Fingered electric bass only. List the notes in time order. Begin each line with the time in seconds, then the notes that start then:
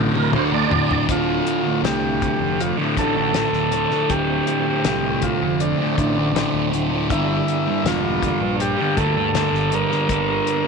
0.32 D2
0.90 D1
1.09 D1
1.83 C2
2.40 F1
2.97 A1
3.53 D1
4.09 D1
4.85 C2
5.42 F1
5.98 A1
6.53 D1
7.10 G1
7.84 E1
8.41 A#1
8.97 D2
9.53 G1
10.09 G1